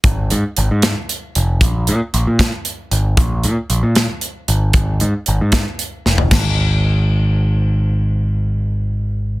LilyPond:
<<
  \new Staff \with { instrumentName = "Picked electric bass" } { \clef bass \time 6/8 \key f \minor \tempo 4. = 77 aes,,8 aes,16 r16 aes,,16 aes,8 r8. f,,8 | bes,,8 bes,16 r16 bes,,16 bes,8 r8. aes,,8 | bes,,8 bes,16 r16 bes,,16 bes,8 r8. aes,,8 | aes,,8 aes,16 r16 aes,,16 aes,8 r8. f,,8 |
aes,,2.~ | aes,,2. | }
  \new DrumStaff \with { instrumentName = "Drums" } \drummode { \time 6/8 <hh bd>8 hh8 hh8 <hh sn>8 hh8 hh8 | <hh bd>8 hh8 hh8 <hh bd sn>8 hh8 hh8 | <hh bd>8 hh8 hh8 <hh sn>8 hh8 hh8 | <hh bd>8 hh8 hh8 <hh bd sn>8 hh8 sn16 tomfh16 |
<cymc bd sn>4. r4. | r4. r4. | }
>>